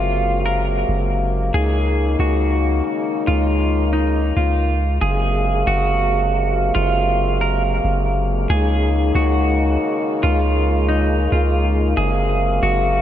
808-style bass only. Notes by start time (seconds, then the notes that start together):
Already playing: F#1
0.89 F#1
1.54 C#2
2.19 C#2
3.28 C#2
4.37 C#2
5.02 F#1
5.67 F#1
6.76 F#1
7.85 F#1
8.50 C#2
9.15 C#2
10.24 C#2
11.32 C#2
11.98 F#1
12.63 F#1